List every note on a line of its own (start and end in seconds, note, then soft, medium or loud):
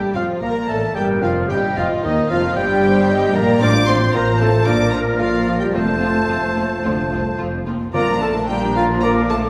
0.00 0.15 G3 soft
0.00 0.15 G3 medium
0.00 0.17 G3 medium
0.00 0.15 G4 medium
0.00 0.16 G4 medium
0.14 0.22 F1 soft
0.14 0.22 F2 soft
0.14 0.42 F3 soft
0.14 0.44 F4 soft
0.14 0.42 F4 soft
0.14 0.22 F5 medium
0.14 0.28 F5 soft
0.41 0.49 A#1 medium
0.41 0.49 A#2 medium
0.41 0.68 A#3 medium
0.41 0.69 A#3 medium
0.41 0.54 A#3 medium
0.41 0.69 A#4 medium
0.41 0.70 A#4 medium
0.41 0.92 D5 medium
0.41 0.68 A#5 medium
0.68 0.95 A1 medium
0.68 0.95 A2 medium
0.68 0.94 A3 medium
0.68 0.81 A3 soft
0.68 0.96 A3 medium
0.68 0.96 A4 medium
0.68 0.77 A4 soft
0.68 0.96 A5 medium
0.94 1.23 G1 medium
0.94 1.22 G2 medium
0.94 1.21 G3 medium
0.94 1.23 G3 medium
0.94 1.08 G3 soft
0.94 1.23 G4 medium
0.94 1.04 G4 medium
0.94 1.49 A#4 soft
0.94 1.24 G5 medium
0.94 1.05 G5 medium
1.21 1.50 F1 medium
1.21 1.49 F2 medium
1.21 1.51 F3 medium
1.21 1.35 F3 soft
1.21 1.50 F3 medium
1.21 1.47 F4 medium
1.21 1.31 F4 medium
1.21 1.50 F5 medium
1.21 1.31 F5 medium
1.47 1.58 G1 medium
1.47 1.57 G2 medium
1.47 2.25 A#2 medium
1.47 1.76 G3 medium
1.47 1.77 G3 medium
1.47 1.60 G4 medium
1.47 1.76 G4 medium
1.47 2.54 D#5 medium
1.47 1.77 G5 medium
1.47 1.59 G5 medium
1.51 1.63 G3 medium
1.75 1.84 F1 medium
1.75 1.84 F2 medium
1.75 2.03 F3 medium
1.75 1.89 F3 medium
1.75 1.88 F4 medium
1.75 2.04 F4 medium
1.75 1.84 F5 medium
1.75 1.90 F5 medium
2.03 2.29 D#2 medium
2.03 2.29 D#3 medium
2.03 2.30 D#3 medium
2.03 2.29 D#4 medium
2.03 2.30 D#4 medium
2.03 2.30 D#5 medium
2.03 2.31 D#5 medium
2.29 2.56 F1 medium
2.29 2.56 F2 medium
2.29 2.55 F3 medium
2.29 2.42 F3 medium
2.29 2.56 F3 medium
2.29 2.42 F4 medium
2.29 2.57 F4 medium
2.29 2.56 F5 medium
2.29 2.55 F5 medium
2.55 3.34 G1 medium
2.55 3.34 G2 medium
2.55 3.35 G3 medium
2.55 3.37 G3 medium
2.55 3.35 G3 medium
2.55 3.37 G4 medium
2.55 3.36 G4 medium
2.55 2.82 D5 medium
2.55 3.34 G5 medium
2.82 3.09 C5 medium
3.09 3.36 D#5 medium
3.35 3.62 A#1 medium
3.35 3.62 A#2 medium
3.35 3.62 A#3 medium
3.35 3.61 A#3 medium
3.35 3.61 A#4 medium
3.35 3.62 A#4 medium
3.35 4.15 D5 medium
3.35 3.47 A#5 medium
3.35 3.62 A#5 medium
3.61 4.09 A1 medium
3.61 4.09 A2 medium
3.61 3.70 F3 medium
3.61 7.63 F3 medium
3.61 3.70 C4 medium
3.61 3.71 C4 medium
3.61 3.88 D4 medium
3.61 3.70 F4 medium
3.61 4.63 C5 medium
3.61 3.74 D5 medium
3.61 3.88 D6 loud
3.87 3.96 F3 medium
3.87 3.95 C4 medium
3.87 4.14 C4 medium
3.87 3.97 C4 medium
3.87 3.97 F4 medium
3.87 4.01 C5 medium
3.87 4.14 C6 medium
4.13 4.61 A1 medium
4.13 4.61 A2 medium
4.13 4.22 F3 medium
4.13 4.41 A#3 medium
4.13 4.21 C4 medium
4.13 4.22 C4 medium
4.13 4.23 F4 medium
4.13 4.27 A#4 medium
4.13 4.65 C5 medium
4.13 4.40 A#5 medium
4.39 4.49 F3 medium
4.39 4.67 A3 medium
4.39 4.48 C4 medium
4.39 4.49 C4 medium
4.39 4.49 F4 medium
4.39 4.70 A4 medium
4.39 4.66 A5 medium
4.66 5.14 A#1 medium
4.66 5.13 A#2 medium
4.66 5.43 A#2 medium
4.66 4.75 F3 medium
4.66 4.75 A#3 medium
4.66 4.93 D4 medium
4.66 4.74 F4 medium
4.66 5.72 A#4 medium
4.66 5.20 A#4 medium
4.66 4.94 D5 medium
4.66 4.93 D6 medium
4.91 5.01 F3 soft
4.91 5.19 A#3 medium
4.91 5.01 A#3 soft
4.91 5.00 F4 soft
4.91 5.22 A#4 medium
4.91 4.99 A#5 medium
5.18 5.68 A#1 medium
5.18 5.68 A#2 medium
5.18 5.28 F3 medium
5.18 5.62 F3 medium
5.18 5.29 A#3 medium
5.18 5.28 F4 medium
5.18 5.62 F4 medium
5.18 5.74 D5 medium
5.18 5.59 F5 medium
5.46 5.55 F3 soft
5.46 5.55 A#3 soft
5.46 5.55 F4 soft
5.60 5.74 G3 medium
5.60 5.74 G4 medium
5.60 5.65 G5 medium
5.73 6.22 F1 medium
5.73 6.52 F2 medium
5.73 6.22 F2 medium
5.73 5.82 F3 medium
5.73 7.39 A3 medium
5.73 5.82 C4 medium
5.73 5.82 F4 medium
5.73 7.36 A4 medium
5.73 7.66 C5 medium
5.73 7.63 C5 medium
5.73 7.35 A5 medium
6.01 6.10 F3 soft
6.01 6.10 C4 soft
6.01 6.09 F4 soft
6.28 6.77 F1 medium
6.28 6.36 F2 medium
6.28 6.37 F3 soft
6.28 6.38 C4 soft
6.28 6.36 F4 soft
6.55 6.63 D#2 medium
6.55 6.65 F3 soft
6.55 6.64 C4 soft
6.55 6.64 F4 soft
6.83 7.32 F1 medium
6.83 7.10 D2 medium
6.83 6.92 F3 medium
6.83 6.92 C4 soft
6.83 6.92 F4 soft
7.10 7.18 C2 medium
7.10 7.20 F3 soft
7.10 7.20 C4 soft
7.10 7.19 F4 soft
7.38 7.88 F1 soft
7.38 7.66 F2 medium
7.38 7.48 F3 soft
7.38 7.48 C4 soft
7.38 7.46 F4 soft
7.66 7.94 D#2 medium
7.66 7.76 F3 soft
7.66 7.76 C4 soft
7.66 7.74 F4 soft
7.93 9.49 A#1 medium
7.93 9.49 A#2 medium
7.93 8.72 A#2 medium
7.93 8.08 D3 medium
7.93 8.13 F3 medium
7.93 8.20 A#3 medium
7.93 8.08 A#3 medium
7.93 8.07 F4 medium
7.93 8.21 A#4 medium
7.93 8.13 D5 medium
7.93 8.45 D5 medium
7.93 8.20 A#5 medium
8.09 8.22 F3 soft
8.09 8.22 D4 soft
8.09 8.23 D4 soft
8.09 8.22 A#4 soft
8.21 8.36 D3 soft
8.21 8.49 A3 medium
8.21 8.36 A#3 soft
8.21 8.36 F4 soft
8.21 8.34 A4 medium
8.21 8.49 A5 medium
8.35 8.49 F3 soft
8.35 8.49 D4 soft
8.35 8.50 D4 soft
8.35 8.49 A#4 soft
8.47 8.62 D3 soft
8.47 8.62 G3 medium
8.47 8.62 A#3 medium
8.47 8.62 F4 medium
8.47 8.76 G4 medium
8.47 8.75 G5 medium
8.47 9.02 A#5 medium
8.62 8.76 F3 soft
8.62 8.76 D4 soft
8.62 8.76 A#4 soft
8.75 8.89 D3 soft
8.75 9.02 F3 medium
8.75 8.89 A#3 soft
8.75 8.89 F4 medium
8.75 9.02 F4 medium
8.75 8.83 F5 medium
8.90 9.03 F3 soft
8.90 9.03 D4 soft
8.90 9.03 A#4 medium
9.01 9.16 D3 medium
9.01 9.21 F3 medium
9.01 9.30 A#3 medium
9.01 9.16 A#3 medium
9.01 9.16 F4 medium
9.01 9.31 A#4 medium
9.01 9.22 D5 medium
9.01 9.09 A#5 medium
9.01 9.49 D6 medium
9.15 9.30 F3 medium
9.15 9.29 D4 medium
9.15 9.30 D4 medium
9.15 9.29 A#4 medium
9.29 9.43 D3 soft
9.29 9.41 A3 medium
9.29 9.43 A#3 medium
9.29 9.43 F4 soft
9.29 9.49 A4 medium
9.29 9.38 A5 medium
9.42 9.49 F3 medium
9.42 9.49 D4 medium
9.42 9.49 A#4 medium